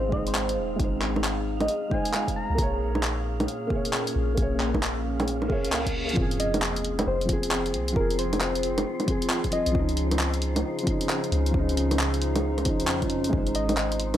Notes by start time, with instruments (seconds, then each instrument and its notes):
Already playing: 808-style bass G#1, felt piano G#3 D#4 C5, ambient pad C4 D#4 F4 G#4, soft synth lead C5, synth texture F5
0.09 felt piano G#3 D#4, kick
0.13 felt piano C5, soft synth lead D#5
0.27 soft synth lead C5, closed hi-hat
0.35 clap, closed hi-hat
0.49 closed hi-hat
0.57 808-style bass D#1
0.76 808-style bass G#1, felt piano G#3 D#4, kick, closed hi-hat
0.84 felt piano C5
1.02 clap
1.16 low bongo
1.24 clap, closed hi-hat
1.60 soft synth lead D#5, closed hi-hat, low bongo
1.68 closed hi-hat
1.90 felt piano G#3 D#4, soft synth lead G#5, kick
1.94 felt piano C5
2.05 closed hi-hat
2.12 felt piano G#3 D#4, clap, closed hi-hat
2.16 felt piano F5
2.28 kick, closed hi-hat
2.36 soft synth lead A#5
2.50 808-style bass C2
2.55 808-style bass A#1, ambient pad A#2, felt piano A#3 G#4, kick, closed hi-hat
2.62 felt piano C#5
2.75 ambient pad A#3
2.95 low bongo
3.03 ambient pad C#4, clap, closed hi-hat
3.40 closed hi-hat, low bongo
3.48 closed hi-hat
3.67 felt piano A#3, kick
3.71 felt piano G#4
3.76 felt piano C#5
3.85 closed hi-hat
3.93 clap, closed hi-hat
4.07 closed hi-hat
4.16 808-style bass A#1
4.34 808-style bass A#1, felt piano A#3 G#4, kick, closed hi-hat
4.42 felt piano C#5
4.60 clap
4.74 kick, low bongo
4.83 clap, closed hi-hat
5.20 closed hi-hat, low bongo
5.27 closed hi-hat, reverse cymbal
5.42 low bongo
5.48 808-style bass F1, felt piano A#3 G#4, kick
5.52 felt piano C#5
5.65 808-style bass C#2, closed hi-hat
5.70 felt piano A#3 G#4 F5, clap, closed hi-hat
5.86 kick, closed hi-hat
6.09 felt piano F3, closed hi-hat
6.16 808-style bass F1, ambient pad C4, felt piano C4, synth texture C5, kick, sub drop
6.21 felt piano G#4
6.31 closed hi-hat
6.40 soft synth lead D#5, open hi-hat
6.46 ambient pad F4
6.54 closed hi-hat, low bongo
6.62 clap
6.76 closed hi-hat
6.84 open hi-hat
6.99 closed hi-hat, low bongo
7.07 808-style bass F1, soft synth lead C5
7.21 felt piano F3, closed hi-hat
7.29 felt piano C4, kick, open hi-hat
7.33 felt piano G#4
7.43 closed hi-hat
7.51 clap
7.66 closed hi-hat
7.74 808-style bass C2, open hi-hat
7.88 closed hi-hat
7.92 808-style bass F1, felt piano F3 C4, soft synth lead A#4, kick
8.00 felt piano G#4
8.10 closed hi-hat
8.19 soft synth lead C5, open hi-hat
8.33 closed hi-hat, low bongo
8.41 clap
8.55 closed hi-hat
8.63 open hi-hat
8.78 closed hi-hat, low bongo
9.00 closed hi-hat, low bongo
9.06 felt piano F3 C4, kick, open hi-hat
9.10 felt piano G#4
9.22 closed hi-hat
9.30 clap
9.44 kick, closed hi-hat
9.51 felt piano F3 C4, soft synth lead D#5, open hi-hat
9.55 felt piano G#4
9.66 808-style bass A#1, closed hi-hat
9.71 808-style bass C#2, ambient pad C#3, felt piano F3, kick
9.76 felt piano C#4 D#4
9.89 closed hi-hat
9.97 open hi-hat
10.07 ambient pad C#4
10.11 ambient pad D#4, closed hi-hat, low bongo
10.19 clap
10.34 closed hi-hat
10.42 open hi-hat
10.56 closed hi-hat, low bongo
10.79 closed hi-hat
10.83 felt piano F3 C#4, kick, open hi-hat
10.91 felt piano D#4
11.01 closed hi-hat
11.09 clap
11.24 closed hi-hat
11.32 808-style bass C#2, open hi-hat
11.46 closed hi-hat
11.51 808-style bass C#2, felt piano F3 C#4, kick
11.59 felt piano D#4
11.69 closed hi-hat
11.77 open hi-hat
11.91 closed hi-hat, low bongo
11.99 clap
12.14 closed hi-hat
12.22 open hi-hat
12.36 closed hi-hat, low bongo
12.58 closed hi-hat, low bongo
12.65 808-style bass G#1, felt piano F3 C#4 D#4, kick, open hi-hat
12.80 808-style bass F2, closed hi-hat
12.87 clap
13.01 felt piano F3 C#4 D#4, kick, closed hi-hat
13.10 open hi-hat
13.24 closed hi-hat
13.29 808-style bass G#1, felt piano G#3 D#4, ambient pad C4, kick
13.37 felt piano C5
13.47 closed hi-hat
13.52 ambient pad G#4, soft synth lead D#5, open hi-hat
13.69 closed hi-hat, low bongo
13.77 clap
13.92 closed hi-hat
14.00 open hi-hat